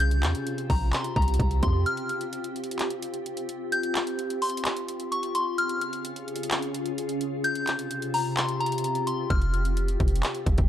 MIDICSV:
0, 0, Header, 1, 5, 480
1, 0, Start_track
1, 0, Time_signature, 4, 2, 24, 8
1, 0, Key_signature, -4, "minor"
1, 0, Tempo, 465116
1, 11030, End_track
2, 0, Start_track
2, 0, Title_t, "Synth bell"
2, 0, Program_c, 0, 98
2, 0, Note_on_c, 0, 91, 120
2, 679, Note_off_c, 0, 91, 0
2, 719, Note_on_c, 0, 82, 85
2, 948, Note_off_c, 0, 82, 0
2, 959, Note_on_c, 0, 84, 85
2, 1188, Note_off_c, 0, 84, 0
2, 1199, Note_on_c, 0, 82, 85
2, 1651, Note_off_c, 0, 82, 0
2, 1680, Note_on_c, 0, 84, 81
2, 1908, Note_off_c, 0, 84, 0
2, 1921, Note_on_c, 0, 89, 110
2, 2372, Note_off_c, 0, 89, 0
2, 3841, Note_on_c, 0, 91, 106
2, 4519, Note_off_c, 0, 91, 0
2, 4561, Note_on_c, 0, 84, 90
2, 5239, Note_off_c, 0, 84, 0
2, 5281, Note_on_c, 0, 85, 85
2, 5509, Note_off_c, 0, 85, 0
2, 5520, Note_on_c, 0, 84, 84
2, 5748, Note_off_c, 0, 84, 0
2, 5760, Note_on_c, 0, 89, 113
2, 6211, Note_off_c, 0, 89, 0
2, 7680, Note_on_c, 0, 91, 121
2, 8359, Note_off_c, 0, 91, 0
2, 8400, Note_on_c, 0, 82, 85
2, 8628, Note_off_c, 0, 82, 0
2, 8638, Note_on_c, 0, 84, 87
2, 8867, Note_off_c, 0, 84, 0
2, 8879, Note_on_c, 0, 82, 89
2, 9331, Note_off_c, 0, 82, 0
2, 9360, Note_on_c, 0, 84, 79
2, 9588, Note_off_c, 0, 84, 0
2, 9599, Note_on_c, 0, 89, 109
2, 10051, Note_off_c, 0, 89, 0
2, 11030, End_track
3, 0, Start_track
3, 0, Title_t, "Ambient pad"
3, 0, Program_c, 1, 92
3, 0, Note_on_c, 1, 48, 83
3, 0, Note_on_c, 1, 60, 77
3, 0, Note_on_c, 1, 65, 74
3, 0, Note_on_c, 1, 67, 89
3, 1900, Note_off_c, 1, 48, 0
3, 5717, Note_off_c, 1, 65, 0
3, 5718, Note_off_c, 1, 60, 0
3, 5718, Note_off_c, 1, 67, 0
3, 5760, Note_on_c, 1, 65, 74
3, 5760, Note_on_c, 1, 68, 90
3, 5761, Note_on_c, 1, 49, 83
3, 5761, Note_on_c, 1, 61, 73
3, 7661, Note_off_c, 1, 49, 0
3, 7661, Note_off_c, 1, 61, 0
3, 7661, Note_off_c, 1, 65, 0
3, 7661, Note_off_c, 1, 68, 0
3, 7677, Note_on_c, 1, 67, 89
3, 7678, Note_on_c, 1, 48, 81
3, 7678, Note_on_c, 1, 60, 74
3, 7678, Note_on_c, 1, 65, 74
3, 9580, Note_off_c, 1, 48, 0
3, 9580, Note_off_c, 1, 60, 0
3, 9600, Note_on_c, 1, 60, 81
3, 11030, Note_off_c, 1, 60, 0
3, 11030, Note_off_c, 1, 65, 0
3, 11030, Note_off_c, 1, 67, 0
3, 11030, End_track
4, 0, Start_track
4, 0, Title_t, "808-style bass"
4, 0, Program_c, 2, 38
4, 0, Note_on_c, 2, 36, 105
4, 240, Note_on_c, 2, 40, 101
4, 256, Note_off_c, 2, 36, 0
4, 354, Note_off_c, 2, 40, 0
4, 720, Note_on_c, 2, 34, 105
4, 951, Note_off_c, 2, 34, 0
4, 1199, Note_on_c, 2, 36, 103
4, 1430, Note_off_c, 2, 36, 0
4, 1440, Note_on_c, 2, 36, 108
4, 1670, Note_off_c, 2, 36, 0
4, 1680, Note_on_c, 2, 41, 96
4, 1910, Note_off_c, 2, 41, 0
4, 9600, Note_on_c, 2, 29, 112
4, 10291, Note_off_c, 2, 29, 0
4, 10321, Note_on_c, 2, 29, 105
4, 10551, Note_off_c, 2, 29, 0
4, 10799, Note_on_c, 2, 29, 107
4, 10915, Note_off_c, 2, 29, 0
4, 10921, Note_on_c, 2, 29, 103
4, 11030, Note_off_c, 2, 29, 0
4, 11030, End_track
5, 0, Start_track
5, 0, Title_t, "Drums"
5, 1, Note_on_c, 9, 42, 75
5, 104, Note_off_c, 9, 42, 0
5, 116, Note_on_c, 9, 42, 52
5, 220, Note_off_c, 9, 42, 0
5, 239, Note_on_c, 9, 39, 102
5, 240, Note_on_c, 9, 42, 74
5, 343, Note_off_c, 9, 39, 0
5, 343, Note_off_c, 9, 42, 0
5, 359, Note_on_c, 9, 42, 60
5, 462, Note_off_c, 9, 42, 0
5, 481, Note_on_c, 9, 42, 78
5, 585, Note_off_c, 9, 42, 0
5, 600, Note_on_c, 9, 42, 58
5, 703, Note_off_c, 9, 42, 0
5, 720, Note_on_c, 9, 36, 87
5, 721, Note_on_c, 9, 46, 81
5, 824, Note_off_c, 9, 36, 0
5, 824, Note_off_c, 9, 46, 0
5, 959, Note_on_c, 9, 39, 120
5, 961, Note_on_c, 9, 42, 73
5, 1063, Note_off_c, 9, 39, 0
5, 1064, Note_off_c, 9, 42, 0
5, 1077, Note_on_c, 9, 42, 64
5, 1181, Note_off_c, 9, 42, 0
5, 1199, Note_on_c, 9, 36, 101
5, 1200, Note_on_c, 9, 42, 51
5, 1260, Note_off_c, 9, 42, 0
5, 1260, Note_on_c, 9, 42, 63
5, 1302, Note_off_c, 9, 36, 0
5, 1320, Note_off_c, 9, 42, 0
5, 1320, Note_on_c, 9, 42, 70
5, 1381, Note_off_c, 9, 42, 0
5, 1381, Note_on_c, 9, 42, 82
5, 1440, Note_on_c, 9, 36, 85
5, 1444, Note_off_c, 9, 42, 0
5, 1444, Note_on_c, 9, 42, 79
5, 1543, Note_off_c, 9, 36, 0
5, 1547, Note_off_c, 9, 42, 0
5, 1557, Note_on_c, 9, 42, 59
5, 1660, Note_off_c, 9, 42, 0
5, 1679, Note_on_c, 9, 42, 79
5, 1680, Note_on_c, 9, 36, 87
5, 1782, Note_off_c, 9, 42, 0
5, 1783, Note_off_c, 9, 36, 0
5, 1921, Note_on_c, 9, 42, 71
5, 2024, Note_off_c, 9, 42, 0
5, 2036, Note_on_c, 9, 42, 54
5, 2140, Note_off_c, 9, 42, 0
5, 2161, Note_on_c, 9, 42, 74
5, 2264, Note_off_c, 9, 42, 0
5, 2279, Note_on_c, 9, 42, 61
5, 2382, Note_off_c, 9, 42, 0
5, 2402, Note_on_c, 9, 42, 78
5, 2505, Note_off_c, 9, 42, 0
5, 2520, Note_on_c, 9, 42, 61
5, 2624, Note_off_c, 9, 42, 0
5, 2640, Note_on_c, 9, 42, 46
5, 2721, Note_off_c, 9, 42, 0
5, 2721, Note_on_c, 9, 42, 63
5, 2800, Note_off_c, 9, 42, 0
5, 2800, Note_on_c, 9, 42, 81
5, 2881, Note_on_c, 9, 39, 116
5, 2882, Note_off_c, 9, 42, 0
5, 2882, Note_on_c, 9, 42, 73
5, 2984, Note_off_c, 9, 39, 0
5, 2986, Note_off_c, 9, 42, 0
5, 2997, Note_on_c, 9, 42, 63
5, 3101, Note_off_c, 9, 42, 0
5, 3121, Note_on_c, 9, 42, 82
5, 3225, Note_off_c, 9, 42, 0
5, 3237, Note_on_c, 9, 42, 52
5, 3340, Note_off_c, 9, 42, 0
5, 3365, Note_on_c, 9, 42, 77
5, 3468, Note_off_c, 9, 42, 0
5, 3478, Note_on_c, 9, 42, 60
5, 3581, Note_off_c, 9, 42, 0
5, 3600, Note_on_c, 9, 42, 79
5, 3704, Note_off_c, 9, 42, 0
5, 3841, Note_on_c, 9, 42, 76
5, 3944, Note_off_c, 9, 42, 0
5, 3957, Note_on_c, 9, 42, 52
5, 4060, Note_off_c, 9, 42, 0
5, 4081, Note_on_c, 9, 39, 103
5, 4081, Note_on_c, 9, 42, 72
5, 4184, Note_off_c, 9, 39, 0
5, 4185, Note_off_c, 9, 42, 0
5, 4200, Note_on_c, 9, 42, 59
5, 4303, Note_off_c, 9, 42, 0
5, 4322, Note_on_c, 9, 42, 77
5, 4425, Note_off_c, 9, 42, 0
5, 4441, Note_on_c, 9, 42, 58
5, 4544, Note_off_c, 9, 42, 0
5, 4561, Note_on_c, 9, 42, 48
5, 4561, Note_on_c, 9, 46, 84
5, 4640, Note_off_c, 9, 42, 0
5, 4640, Note_on_c, 9, 42, 63
5, 4664, Note_off_c, 9, 46, 0
5, 4720, Note_off_c, 9, 42, 0
5, 4720, Note_on_c, 9, 42, 80
5, 4800, Note_on_c, 9, 39, 119
5, 4801, Note_off_c, 9, 42, 0
5, 4801, Note_on_c, 9, 42, 74
5, 4903, Note_off_c, 9, 39, 0
5, 4905, Note_off_c, 9, 42, 0
5, 4918, Note_on_c, 9, 42, 62
5, 5021, Note_off_c, 9, 42, 0
5, 5041, Note_on_c, 9, 42, 81
5, 5144, Note_off_c, 9, 42, 0
5, 5157, Note_on_c, 9, 42, 53
5, 5260, Note_off_c, 9, 42, 0
5, 5284, Note_on_c, 9, 42, 80
5, 5388, Note_off_c, 9, 42, 0
5, 5398, Note_on_c, 9, 42, 61
5, 5501, Note_off_c, 9, 42, 0
5, 5520, Note_on_c, 9, 42, 78
5, 5624, Note_off_c, 9, 42, 0
5, 5762, Note_on_c, 9, 42, 74
5, 5865, Note_off_c, 9, 42, 0
5, 5876, Note_on_c, 9, 42, 53
5, 5980, Note_off_c, 9, 42, 0
5, 6001, Note_on_c, 9, 42, 74
5, 6104, Note_off_c, 9, 42, 0
5, 6119, Note_on_c, 9, 42, 60
5, 6223, Note_off_c, 9, 42, 0
5, 6241, Note_on_c, 9, 42, 79
5, 6344, Note_off_c, 9, 42, 0
5, 6360, Note_on_c, 9, 42, 60
5, 6463, Note_off_c, 9, 42, 0
5, 6480, Note_on_c, 9, 42, 49
5, 6560, Note_off_c, 9, 42, 0
5, 6560, Note_on_c, 9, 42, 65
5, 6639, Note_off_c, 9, 42, 0
5, 6639, Note_on_c, 9, 42, 79
5, 6719, Note_on_c, 9, 39, 117
5, 6720, Note_off_c, 9, 42, 0
5, 6720, Note_on_c, 9, 42, 72
5, 6822, Note_off_c, 9, 39, 0
5, 6824, Note_off_c, 9, 42, 0
5, 6837, Note_on_c, 9, 42, 63
5, 6940, Note_off_c, 9, 42, 0
5, 6961, Note_on_c, 9, 42, 85
5, 7064, Note_off_c, 9, 42, 0
5, 7075, Note_on_c, 9, 42, 55
5, 7178, Note_off_c, 9, 42, 0
5, 7204, Note_on_c, 9, 42, 78
5, 7307, Note_off_c, 9, 42, 0
5, 7317, Note_on_c, 9, 42, 60
5, 7420, Note_off_c, 9, 42, 0
5, 7439, Note_on_c, 9, 42, 79
5, 7542, Note_off_c, 9, 42, 0
5, 7681, Note_on_c, 9, 42, 74
5, 7784, Note_off_c, 9, 42, 0
5, 7796, Note_on_c, 9, 42, 52
5, 7899, Note_off_c, 9, 42, 0
5, 7919, Note_on_c, 9, 39, 102
5, 7920, Note_on_c, 9, 42, 76
5, 8022, Note_off_c, 9, 39, 0
5, 8023, Note_off_c, 9, 42, 0
5, 8038, Note_on_c, 9, 42, 61
5, 8142, Note_off_c, 9, 42, 0
5, 8160, Note_on_c, 9, 42, 78
5, 8263, Note_off_c, 9, 42, 0
5, 8279, Note_on_c, 9, 42, 58
5, 8383, Note_off_c, 9, 42, 0
5, 8400, Note_on_c, 9, 46, 87
5, 8503, Note_off_c, 9, 46, 0
5, 8640, Note_on_c, 9, 39, 121
5, 8642, Note_on_c, 9, 42, 70
5, 8743, Note_off_c, 9, 39, 0
5, 8745, Note_off_c, 9, 42, 0
5, 8757, Note_on_c, 9, 42, 63
5, 8860, Note_off_c, 9, 42, 0
5, 8881, Note_on_c, 9, 42, 52
5, 8941, Note_off_c, 9, 42, 0
5, 8941, Note_on_c, 9, 42, 64
5, 9000, Note_off_c, 9, 42, 0
5, 9000, Note_on_c, 9, 42, 72
5, 9061, Note_off_c, 9, 42, 0
5, 9061, Note_on_c, 9, 42, 84
5, 9125, Note_off_c, 9, 42, 0
5, 9125, Note_on_c, 9, 42, 82
5, 9228, Note_off_c, 9, 42, 0
5, 9238, Note_on_c, 9, 42, 58
5, 9341, Note_off_c, 9, 42, 0
5, 9361, Note_on_c, 9, 42, 79
5, 9464, Note_off_c, 9, 42, 0
5, 9600, Note_on_c, 9, 36, 122
5, 9601, Note_on_c, 9, 42, 76
5, 9703, Note_off_c, 9, 36, 0
5, 9705, Note_off_c, 9, 42, 0
5, 9717, Note_on_c, 9, 42, 53
5, 9821, Note_off_c, 9, 42, 0
5, 9842, Note_on_c, 9, 42, 73
5, 9945, Note_off_c, 9, 42, 0
5, 9960, Note_on_c, 9, 42, 61
5, 10063, Note_off_c, 9, 42, 0
5, 10082, Note_on_c, 9, 42, 82
5, 10185, Note_off_c, 9, 42, 0
5, 10200, Note_on_c, 9, 42, 61
5, 10304, Note_off_c, 9, 42, 0
5, 10320, Note_on_c, 9, 42, 48
5, 10321, Note_on_c, 9, 36, 88
5, 10401, Note_off_c, 9, 42, 0
5, 10401, Note_on_c, 9, 42, 63
5, 10424, Note_off_c, 9, 36, 0
5, 10480, Note_off_c, 9, 42, 0
5, 10480, Note_on_c, 9, 42, 80
5, 10559, Note_on_c, 9, 39, 120
5, 10561, Note_off_c, 9, 42, 0
5, 10561, Note_on_c, 9, 42, 73
5, 10662, Note_off_c, 9, 39, 0
5, 10664, Note_off_c, 9, 42, 0
5, 10677, Note_on_c, 9, 42, 62
5, 10780, Note_off_c, 9, 42, 0
5, 10799, Note_on_c, 9, 36, 96
5, 10801, Note_on_c, 9, 42, 84
5, 10902, Note_off_c, 9, 36, 0
5, 10904, Note_off_c, 9, 42, 0
5, 10916, Note_on_c, 9, 42, 52
5, 10920, Note_on_c, 9, 36, 91
5, 11019, Note_off_c, 9, 42, 0
5, 11024, Note_off_c, 9, 36, 0
5, 11030, End_track
0, 0, End_of_file